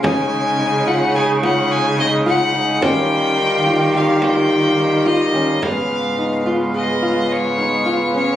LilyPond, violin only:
\new Staff \with { instrumentName = "Violin" } { \time 5/4 \key cis \mixolydian \tempo 4 = 107 gis''4. fis''8 gis''8 fis''8 gis''8 dis''8 fis''4 | g''2 eis''8 g''4. dis''4 | eis''4. r8 dis''4 cis''4. cis''8 | }